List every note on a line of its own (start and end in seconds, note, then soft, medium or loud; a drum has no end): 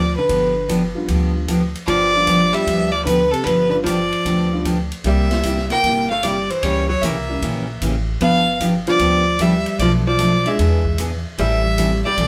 0.00 0.14 D2 medium
0.00 0.17 F3 medium
0.00 0.16 D5 medium
0.16 0.67 D3 medium
0.16 0.66 B4 medium
0.29 0.93 G1 medium
0.29 0.52 D3 medium
0.29 0.52 F3 medium
0.29 0.52 B3 medium
0.29 0.53 D4 medium
0.29 0.53 G4 medium
0.29 kick soft
0.29 ride medium
0.69 0.81 D3 medium
0.69 0.81 F3 medium
0.69 0.82 B3 medium
0.69 0.81 D4 medium
0.69 0.82 G4 medium
0.69 kick soft
0.69 hi-hat pedal medium
0.69 ride medium
0.95 1.45 F3 medium
0.95 1.46 G3 medium
0.95 1.46 B3 medium
0.95 1.46 D4 medium
0.95 1.46 F4 medium
1.08 1.72 D2 medium
1.08 1.31 D3 medium
1.08 1.31 F3 medium
1.08 1.31 B3 medium
1.08 1.32 D4 medium
1.08 1.32 G4 medium
1.08 kick soft
1.08 ride medium
1.48 1.60 D3 medium
1.48 1.60 F3 medium
1.48 1.61 B3 medium
1.48 1.61 D4 medium
1.48 1.61 G4 medium
1.48 kick soft
1.48 hi-hat pedal medium
1.48 ride medium
1.75 ride soft
1.86 2.51 G1 medium
1.86 2.11 D3 medium
1.86 2.53 F3 medium
1.86 2.11 F3 medium
1.86 2.11 B3 medium
1.86 2.11 D4 medium
1.86 2.11 G4 medium
1.86 2.55 D5 loud
1.86 kick soft
1.86 ride medium
2.14 2.64 F3 medium
2.14 2.64 G3 medium
2.14 2.65 B3 medium
2.14 2.65 D4 medium
2.14 2.65 F4 medium
2.27 2.39 D3 medium
2.27 2.39 F3 medium
2.27 2.39 B3 medium
2.27 2.40 D4 medium
2.27 2.40 G4 medium
2.27 kick soft
2.27 hi-hat pedal medium
2.27 ride medium
2.53 2.92 G3 medium
2.53 2.93 E5 loud
2.53 ride soft
2.67 3.30 D2 medium
2.67 2.90 D3 medium
2.67 2.90 F3 medium
2.67 2.90 B3 medium
2.67 2.90 D4 medium
2.67 2.90 G4 medium
2.67 kick soft
2.67 ride medium
2.92 3.06 F3 medium
2.92 3.05 D5 loud
3.05 3.32 D3 medium
3.05 3.19 D3 medium
3.05 3.19 F3 medium
3.05 3.19 B3 medium
3.05 3.19 D4 medium
3.05 3.19 G4 medium
3.05 3.33 B4 medium
3.05 kick soft
3.05 hi-hat pedal medium
3.05 ride medium
3.31 3.44 C3 medium
3.31 3.46 A4 medium
3.31 ride soft
3.44 4.09 G1 medium
3.44 3.69 D3 medium
3.44 3.69 F3 medium
3.44 3.69 B3 medium
3.44 3.69 D4 medium
3.44 3.69 G4 medium
3.44 3.70 B4 medium
3.44 kick soft
3.44 ride medium
3.70 3.75 D3 medium
3.70 3.84 F3 medium
3.70 3.84 G3 medium
3.70 3.84 B3 medium
3.70 3.84 D4 medium
3.70 3.85 F4 medium
3.70 3.77 B4 medium
3.84 3.98 D3 medium
3.84 4.60 F3 medium
3.84 3.98 F3 medium
3.84 3.98 B3 medium
3.84 3.98 D4 medium
3.84 3.98 G4 medium
3.84 4.60 D5 medium
3.84 kick soft
3.84 hi-hat pedal medium
3.84 ride medium
4.12 ride soft
4.25 4.89 D2 medium
4.25 4.48 D3 medium
4.25 4.48 F3 medium
4.25 4.48 B3 medium
4.25 4.48 D4 medium
4.25 4.49 G4 medium
4.25 kick soft
4.25 ride medium
4.52 4.64 F3 medium
4.52 4.64 G3 medium
4.52 4.64 B3 medium
4.52 4.64 D4 medium
4.52 4.64 F4 medium
4.65 4.77 D3 medium
4.65 4.77 F3 medium
4.65 4.77 B3 medium
4.65 4.77 D4 medium
4.65 4.78 G4 medium
4.65 kick soft
4.65 hi-hat pedal medium
4.65 ride medium
4.92 ride soft
5.04 5.68 C2 medium
5.04 5.27 C3 medium
5.04 5.28 E3 medium
5.04 5.28 G3 medium
5.04 5.27 G3 medium
5.04 5.68 G3 medium
5.04 5.28 A#3 medium
5.04 5.27 A#3 medium
5.04 5.28 C4 medium
5.04 5.28 E4 medium
5.04 5.28 G4 medium
5.04 5.67 E5 loud
5.04 kick soft
5.04 ride medium
5.31 snare medium
5.31 ride soft
5.43 5.56 C3 medium
5.43 5.56 G3 medium
5.43 5.56 A#3 medium
5.43 5.56 E4 medium
5.43 5.56 G4 medium
5.43 kick soft
5.43 hi-hat pedal medium
5.43 ride medium
5.57 snare soft
5.70 6.08 A#3 medium
5.70 6.08 G5 loud
5.70 snare soft
5.70 ride soft
5.83 6.47 G1 medium
5.83 6.07 C3 medium
5.83 6.07 G3 medium
5.83 6.07 A#3 medium
5.83 6.07 E4 medium
5.83 6.07 G4 medium
5.83 kick soft
5.83 ride medium
6.11 6.24 A3 medium
6.11 6.25 F5 medium
6.23 6.35 C3 medium
6.23 6.35 G3 medium
6.23 6.50 G3 medium
6.23 6.35 A#3 medium
6.23 6.36 E4 medium
6.23 6.36 G4 medium
6.23 6.52 D5 medium
6.23 kick soft
6.23 hi-hat pedal medium
6.23 ride medium
6.50 6.63 E3 medium
6.50 6.65 C5 medium
6.50 ride soft
6.63 6.94 C#2 medium
6.63 6.85 C#3 medium
6.63 6.86 E3 medium
6.63 6.89 G3 medium
6.63 6.86 A#3 medium
6.63 6.86 C#4 medium
6.63 6.86 G4 medium
6.63 6.89 C#5 medium
6.63 kick soft
6.63 ride medium
6.89 7.04 F#3 medium
6.89 7.04 C#5 medium
7.02 7.36 C2 medium
7.02 7.14 C#3 medium
7.02 7.14 E3 medium
7.02 7.14 A#3 medium
7.02 7.82 A#3 medium
7.02 7.15 C#4 medium
7.02 7.15 G4 medium
7.02 7.81 E5 medium
7.02 kick soft
7.02 hi-hat pedal medium
7.02 ride medium
7.29 7.40 E3 medium
7.29 7.41 G3 medium
7.29 7.41 A#3 medium
7.29 7.41 C#4 medium
7.29 7.41 E4 medium
7.42 7.76 A#1 medium
7.42 7.64 C#3 medium
7.42 7.65 E3 medium
7.42 7.65 A#3 medium
7.42 7.65 C#4 medium
7.42 7.65 G4 medium
7.42 kick soft
7.42 ride medium
7.81 8.15 A1 medium
7.81 7.94 C#3 medium
7.81 7.94 E3 medium
7.81 7.94 A#3 medium
7.81 7.94 C#4 medium
7.81 7.94 G4 medium
7.81 kick soft
7.81 hi-hat pedal medium
7.81 ride medium
8.21 8.84 G1 medium
8.21 8.43 D3 medium
8.21 8.43 F3 medium
8.21 8.44 B3 medium
8.21 8.58 B3 medium
8.21 8.44 D4 medium
8.21 8.44 G4 medium
8.21 8.58 F5 loud
8.21 kick soft
8.21 ride medium
8.60 8.72 D3 medium
8.60 8.73 F3 medium
8.60 8.73 B3 medium
8.60 8.73 D4 medium
8.60 8.73 G4 medium
8.60 kick soft
8.60 hi-hat pedal medium
8.60 ride medium
8.87 8.99 F3 medium
8.87 9.36 F3 medium
8.87 8.99 G3 medium
8.87 8.99 B3 medium
8.87 8.99 D4 medium
8.87 8.99 F4 medium
8.87 9.43 D5 loud
8.87 ride soft
8.99 9.63 D2 medium
8.99 9.22 D3 medium
8.99 9.22 F3 medium
8.99 9.23 B3 medium
8.99 9.23 D4 medium
8.99 9.23 G4 medium
8.99 kick soft
8.99 ride medium
9.39 9.52 D3 medium
9.39 9.52 F3 medium
9.39 9.80 G3 medium
9.39 9.52 B3 medium
9.39 9.52 D4 medium
9.39 9.52 G4 medium
9.39 9.79 E5 loud
9.39 kick soft
9.39 hi-hat pedal medium
9.39 ride medium
9.66 ride soft
9.79 10.43 B1 loud
9.79 10.02 B2 medium
9.79 10.02 F3 medium
9.79 9.89 F3 medium
9.79 10.02 A3 medium
9.79 10.02 D4 medium
9.79 10.02 A4 medium
9.79 9.91 D5 medium
9.79 kick soft
9.79 ride medium
10.07 10.43 F3 medium
10.07 10.48 D5 loud
10.19 10.31 B2 medium
10.19 10.31 F3 medium
10.19 10.31 A3 medium
10.19 10.31 D4 medium
10.19 10.31 A4 medium
10.19 kick soft
10.19 hi-hat pedal medium
10.19 ride medium
10.45 10.57 F3 medium
10.45 10.57 G#3 medium
10.45 11.00 G#3 medium
10.45 10.57 B3 medium
10.45 10.57 D4 medium
10.45 10.57 E4 medium
10.45 10.99 E5 medium
10.45 ride soft
10.59 11.22 E2 medium
10.59 10.81 E3 medium
10.59 10.82 B3 medium
10.59 10.82 D4 medium
10.59 10.82 G#4 medium
10.59 kick soft
10.59 ride medium
10.85 kick soft
10.98 11.11 E3 medium
10.98 11.11 B3 medium
10.98 11.11 D4 medium
10.98 11.11 G#4 medium
10.98 kick soft
10.98 hi-hat pedal medium
10.98 ride medium
11.38 12.02 A1 medium
11.38 11.61 E3 medium
11.38 11.61 G3 medium
11.38 12.01 G3 loud
11.38 11.61 C4 medium
11.38 11.61 E4 medium
11.38 11.61 A4 medium
11.38 12.00 E5 loud
11.38 kick soft
11.38 ride medium
11.78 11.90 E3 medium
11.78 12.28 G3 medium
11.78 11.90 G3 medium
11.78 12.28 A3 medium
11.78 12.28 C4 medium
11.78 11.90 C4 medium
11.78 12.28 E4 medium
11.78 11.90 E4 medium
11.78 12.28 G4 medium
11.78 11.90 A4 medium
11.78 kick soft
11.78 hi-hat pedal medium
11.78 ride medium
12.05 12.28 G3 medium
12.05 12.28 D5 loud
12.17 12.28 B1 medium
12.17 12.28 E3 medium
12.17 12.28 G3 medium
12.17 12.28 C4 medium
12.17 12.28 E4 medium
12.17 12.28 A4 medium
12.17 kick soft
12.17 ride medium